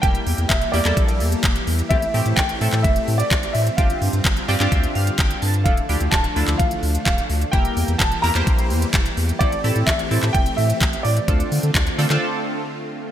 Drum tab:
HH |xxoxxxoxxxoxxxox|xxoxxxoxxxoxxxox|xxoxxxoxxxoxxxox|xxoxxxoxxxoxxxox|
CP |----x--x----x---|----x--x----x---|----x--x----x---|----x--x----x---|
BD |o---o---o---o---|o---o---o---o---|o---o---o---o---|o---o---o---o---|

HH |xxoxxxoxxxoxxxox|xxoxxxoxxxoxxxox|xxoxxxox--------|
CP |----x--x----x---|----x--x----x---|----x--x--------|
BD |o---o---o---o---|o---o---o---o---|o---o-----------|